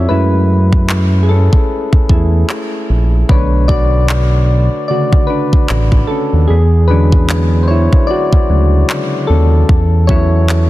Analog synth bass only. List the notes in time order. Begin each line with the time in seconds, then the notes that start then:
0.10 F#2
1.93 E2
2.10 E2
2.90 A#1
3.29 B1
5.70 A1
6.33 D#2
6.49 E2
8.33 D2
8.49 D2
9.29 D#2
9.69 E2